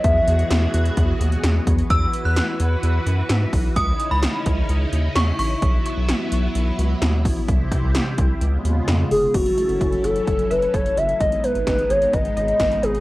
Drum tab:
CC |----------------|----------------|----------------|----------------|
HH |x-xxx-xxx-xxx-xx|x-x-x-x-x-x-x-o-|x-x-x-x-x-x-x-o-|x-x-x-x-x-x-x-o-|
SD |----o-------o---|----o-------o---|----o-------o---|----o-------o---|
BD |o-------o-----o-|o-------------o-|o-----o---------|o-------------o-|

CC |----------------|x---------------|----------------|
HH |x-x-x-x-x-x-x-o-|xxxxxxxxxxxxxxxx|xxxxxxxxxxxxxxxx|
SD |----o-------o---|----------------|----o-------o---|
BD |o-o---o---------|o---o---o---o---|o---o---o---o---|